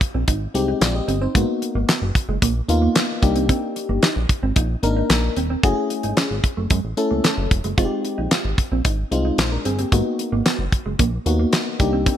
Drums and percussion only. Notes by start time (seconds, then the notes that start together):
0.01 kick, closed hi-hat
0.28 kick, closed hi-hat
0.55 closed hi-hat
0.81 snare, clap, closed hi-hat
1.08 closed hi-hat
1.35 kick, closed hi-hat
1.62 closed hi-hat
1.89 snare, clap, closed hi-hat
2.15 kick, closed hi-hat
2.42 kick, closed hi-hat
2.69 closed hi-hat
2.95 snare, clap, closed hi-hat
3.23 kick, closed hi-hat
3.36 closed hi-hat
3.49 kick, closed hi-hat
3.76 closed hi-hat
4.03 snare, clap, closed hi-hat
4.29 kick, closed hi-hat
4.56 kick, closed hi-hat
4.83 closed hi-hat
5.10 snare, clap, closed hi-hat
5.37 closed hi-hat
5.63 kick, closed hi-hat
5.90 closed hi-hat
6.03 closed hi-hat
6.17 snare, clap, closed hi-hat
6.44 kick, closed hi-hat
6.70 kick, closed hi-hat
6.97 closed hi-hat
7.24 snare, clap, closed hi-hat
7.51 kick, closed hi-hat
7.64 closed hi-hat
7.78 kick, closed hi-hat
8.05 closed hi-hat
8.31 snare, clap, closed hi-hat
8.58 kick, closed hi-hat
8.85 kick, closed hi-hat
9.12 closed hi-hat
9.38 snare, clap, closed hi-hat
9.65 closed hi-hat
9.79 closed hi-hat
9.92 kick, closed hi-hat
10.19 closed hi-hat
10.46 snare, clap, closed hi-hat
10.72 kick, closed hi-hat
10.99 kick, closed hi-hat
11.26 closed hi-hat
11.53 snare, clap, closed hi-hat
11.80 kick, closed hi-hat
12.06 kick, closed hi-hat